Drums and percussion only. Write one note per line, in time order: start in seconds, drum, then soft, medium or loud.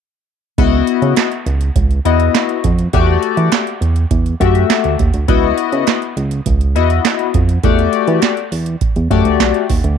0.58 kick loud
0.58 closed hi-hat medium
0.87 closed hi-hat medium
1.02 closed hi-hat soft
1.16 snare loud
1.16 clap medium
1.16 closed hi-hat loud
1.32 closed hi-hat soft
1.46 closed hi-hat medium
1.61 closed hi-hat medium
1.76 kick loud
1.76 closed hi-hat medium
1.91 closed hi-hat soft
2.05 closed hi-hat medium
2.20 closed hi-hat soft
2.35 snare loud
2.35 clap medium
2.35 closed hi-hat medium
2.49 closed hi-hat soft
2.64 kick loud
2.64 closed hi-hat medium
2.79 closed hi-hat medium
2.93 kick loud
2.93 closed hi-hat medium
3.23 closed hi-hat medium
3.37 closed hi-hat soft
3.52 snare loud
3.52 clap medium
3.52 closed hi-hat medium
3.67 closed hi-hat soft
3.82 closed hi-hat medium
3.96 closed hi-hat medium
4.11 kick loud
4.11 closed hi-hat medium
4.26 closed hi-hat soft
4.40 kick medium
4.40 closed hi-hat medium
4.55 closed hi-hat soft
4.70 snare loud
4.70 clap medium
4.70 closed hi-hat medium
4.84 closed hi-hat soft
4.99 kick loud
4.99 closed hi-hat medium
5.14 closed hi-hat medium
5.28 kick loud
5.28 closed hi-hat medium
5.58 closed hi-hat medium
5.72 closed hi-hat soft
5.87 snare loud
5.87 clap medium
5.87 closed hi-hat medium
6.02 closed hi-hat soft
6.17 closed hi-hat medium
6.31 closed hi-hat medium
6.46 kick loud
6.46 closed hi-hat medium
6.61 closed hi-hat soft
6.76 closed hi-hat medium
6.90 closed hi-hat medium
7.05 snare loud
7.05 clap medium
7.05 closed hi-hat medium
7.19 closed hi-hat soft
7.34 kick loud
7.34 closed hi-hat medium
7.49 closed hi-hat medium
7.63 kick loud
7.63 closed hi-hat medium
7.79 closed hi-hat soft
7.93 closed hi-hat medium
8.08 closed hi-hat soft
8.22 snare loud
8.22 clap loud
8.22 closed hi-hat medium
8.37 closed hi-hat soft
8.52 open hi-hat medium
8.66 closed hi-hat medium
8.81 kick loud
8.81 closed hi-hat medium
8.96 closed hi-hat soft
9.11 kick medium
9.11 closed hi-hat medium
9.25 closed hi-hat soft
9.40 snare loud
9.40 clap medium
9.40 closed hi-hat medium
9.54 closed hi-hat soft
9.70 kick loud
9.70 open hi-hat medium
9.84 closed hi-hat medium